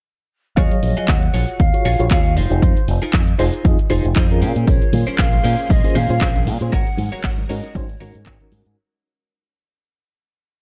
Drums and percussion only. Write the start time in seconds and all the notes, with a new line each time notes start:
0.57 kick, closed hi-hat, shaker
0.71 closed hi-hat
0.83 open hi-hat, shaker
0.97 closed hi-hat, shaker
1.08 kick, clap, closed hi-hat, shaker
1.23 closed hi-hat
1.34 open hi-hat, shaker
1.48 closed hi-hat, shaker
1.60 kick, closed hi-hat, shaker
1.74 closed hi-hat
1.85 open hi-hat, shaker
2.00 closed hi-hat, shaker
2.11 kick, clap, closed hi-hat, shaker
2.25 closed hi-hat
2.37 open hi-hat, shaker
2.51 closed hi-hat, shaker
2.62 kick, closed hi-hat, shaker
2.77 closed hi-hat
2.88 open hi-hat, shaker
3.02 closed hi-hat, shaker
3.13 kick, clap, closed hi-hat, shaker
3.28 closed hi-hat
3.39 open hi-hat, shaker
3.54 closed hi-hat, shaker
3.65 kick, closed hi-hat, shaker
3.79 closed hi-hat
3.90 open hi-hat, shaker
4.05 closed hi-hat, shaker
4.16 kick, clap, closed hi-hat, shaker
4.30 closed hi-hat
4.42 open hi-hat, shaker
4.56 closed hi-hat, shaker
4.67 kick, closed hi-hat, tambourine, shaker
4.82 closed hi-hat
4.93 open hi-hat, tambourine, high conga, low conga, shaker
5.07 closed hi-hat, tambourine, shaker
5.18 kick, clap, closed hi-hat, tambourine, shaker
5.33 closed hi-hat, tambourine, high conga
5.44 open hi-hat, tambourine, high bongo, shaker
5.59 closed hi-hat, tambourine, high bongo, shaker
5.69 kick, closed hi-hat, tambourine, high conga, shaker
5.84 closed hi-hat, tambourine
5.95 open hi-hat, tambourine, low conga, shaker
6.09 closed hi-hat, tambourine, high conga, shaker
6.21 kick, clap, closed hi-hat, tambourine, shaker
6.36 closed hi-hat, low conga
6.47 open hi-hat, tambourine, high bongo, high conga, shaker
6.61 closed hi-hat, tambourine, shaker
6.73 kick, closed hi-hat, tambourine, shaker
6.87 closed hi-hat
6.97 open hi-hat, tambourine, high bongo, high conga, low conga, shaker
7.13 closed hi-hat, tambourine, shaker
7.24 kick, clap, closed hi-hat, tambourine, shaker
7.37 closed hi-hat, tambourine, high conga
7.49 open hi-hat, tambourine, high bongo, shaker
7.63 closed hi-hat, tambourine, high bongo, shaker
7.75 kick, closed hi-hat, tambourine, high conga, shaker
7.89 closed hi-hat, tambourine
8.00 open hi-hat, tambourine, high bongo, low conga, shaker
8.15 closed hi-hat, tambourine, high conga, shaker
8.26 kick, clap, closed hi-hat, tambourine, shaker
8.40 closed hi-hat, low conga
8.51 open hi-hat, tambourine, high conga, shaker
8.65 closed hi-hat, tambourine, shaker